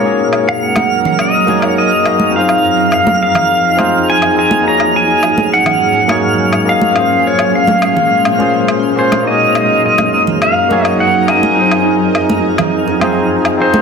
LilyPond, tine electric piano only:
\new Staff \with { instrumentName = "Tine electric piano" } { \time 4/4 \key ges \lydian \tempo 4 = 104 <bes ees' ges' aes' des''>2~ <bes ees' ges' aes' des''>8 <bes ees' ges' aes' des''>4 <bes ees' ges' aes' ees''>8 | <c' ees' f' aes' c''>2~ <c' ees' f' aes' c''>8 <c' ees' f' aes' c''>4 <c' ees' f' aes' ees''>8 | <bes ees' ges' aes' des''>2~ <bes ees' ges' aes' des''>8 <bes ees' ges' aes' des''>4 <bes ees' ges' aes' ees''>8 | <bes des' f' aes' c''>2~ <bes des' f' aes' c''>8 <bes des' f' aes' c''>4 <bes des' f' aes' des''>8 |
<bes ees' ges' aes' des''>2~ <bes ees' ges' aes' des''>8 <bes ees' ges' aes' des''>4 <bes ees' ges' aes' ees''>8 | <c' ees' f' aes' c''>2~ <c' ees' f' aes' c''>8 <c' ees' f' aes' c''>4 <c' ees' f' aes' ees''>8 | }